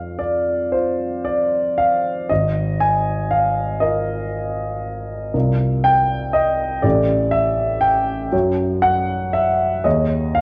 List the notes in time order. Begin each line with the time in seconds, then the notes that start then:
Already playing: F2 F5
0.19 D5
0.72 F4 C5
1.25 D5
1.78 F5
2.30 G#1 D#5
2.81 G#5
3.31 F5
3.80 F4 A#4 D#5
5.34 C2 F4 A#4
5.84 G5
6.33 D#5
6.82 A1 G4 A4 D5
7.31 E5
7.81 G5
8.32 F#2 F#4 C#5
8.82 F#5
9.33 E5
9.84 D#2 G#4 C#5 D#5
10.35 F5